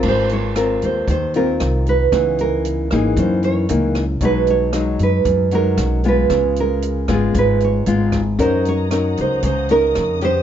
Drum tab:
CC |x-------|--------|--------|--------|
HH |-xxxxxxx|xxxxxxxx|xxxxxxxx|xxxxxxxx|
SD |--r---r-|r--r---r|--r---r-|r--r---r|
BD |o---o---|o---o---|o---o---|o--oo--o|

CC |--------|
HH |xxxxxxxx|
SD |--r---r-|
BD |o---o---|